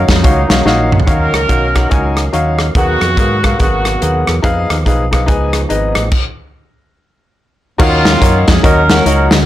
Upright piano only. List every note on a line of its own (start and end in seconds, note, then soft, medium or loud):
0.00 0.13 D#4 medium
0.00 0.13 F#4 medium
0.00 0.13 C#5 medium
0.00 0.13 F5 medium
0.23 0.40 D#4 medium
0.23 0.41 F#4 medium
0.23 0.41 C#5 medium
0.23 0.41 F5 medium
0.48 0.59 D#4 medium
0.48 0.60 F#4 medium
0.48 0.60 C#5 medium
0.48 0.60 F5 medium
0.65 0.96 D#4 medium
0.65 0.96 F#4 medium
0.65 0.97 C#5 medium
0.65 0.97 F5 loud
1.06 1.71 D#3 medium
1.06 1.38 D#4 medium
1.06 1.38 F#4 medium
1.06 1.38 C#5 medium
1.06 1.38 F5 medium
1.48 1.66 D#4 medium
1.48 1.66 F#4 medium
1.48 1.66 C#5 medium
1.48 1.67 F5 medium
1.75 1.86 D#4 medium
1.75 1.86 F#4 medium
1.75 1.86 C#5 medium
1.75 1.86 F#5 medium
1.89 2.21 D#4 medium
1.89 2.21 F#4 medium
1.89 2.22 C#5 medium
1.89 2.22 G#5 medium
2.33 2.64 D#4 medium
2.33 2.64 F#4 medium
2.33 2.64 C#5 medium
2.33 2.64 F5 medium
2.75 3.40 D#3 medium
2.75 3.06 B3 medium
2.75 3.06 G#4 medium
2.75 3.06 A#4 medium
2.75 3.07 F#5 medium
3.17 3.34 B3 medium
3.17 3.35 G#4 medium
3.17 3.35 A#4 medium
3.17 3.35 F5 medium
3.43 3.53 B3 medium
3.43 3.54 G#4 medium
3.43 3.54 A#4 medium
3.43 3.54 F5 medium
3.59 3.90 B3 medium
3.59 3.90 G#4 medium
3.59 3.90 A#4 medium
3.59 3.90 F#5 medium
4.01 4.32 B3 medium
4.01 4.32 G#4 medium
4.01 4.33 A#4 medium
4.01 4.33 F#5 medium
4.42 4.74 D#4 loud
4.42 4.74 G#4 loud
4.42 4.74 B4 medium
4.42 4.75 F5 loud
4.86 5.03 D#4 medium
4.86 5.03 G#4 medium
4.86 5.03 B4 medium
4.86 5.03 F5 medium
5.11 5.22 D#4 medium
5.11 5.22 G#4 medium
5.11 5.22 B4 medium
5.11 5.23 F5 medium
5.26 5.58 D#4 medium
5.26 5.58 G#4 medium
5.26 5.58 B4 medium
5.26 5.59 G#5 medium
5.69 6.00 D#4 medium
5.69 6.01 G#4 medium
5.69 6.01 B4 medium
5.69 6.01 D#5 medium
7.78 8.43 D#3 medium
7.78 8.10 D#4 medium
7.78 8.10 F#4 loud
7.78 8.10 A#4 medium
7.78 8.10 C#5 medium
7.78 8.10 F5 loud
8.20 8.52 D#4 medium
8.20 8.52 F#4 medium
8.20 8.52 A#4 medium
8.20 8.52 C#5 medium
8.20 8.52 F5 medium
8.63 8.80 D#4 medium
8.63 8.80 F#4 medium
8.63 8.80 A#4 medium
8.63 8.80 C#5 medium
8.63 8.81 D#5 medium
8.89 8.99 D#4 medium
8.89 9.00 F#4 medium
8.89 9.00 A#4 medium
8.89 9.00 C#5 medium
8.89 9.00 F#5 medium
9.06 9.36 D#4 medium
9.06 9.36 F#4 medium
9.06 9.36 A#4 medium
9.06 9.36 C#5 medium
9.06 9.37 F#5 medium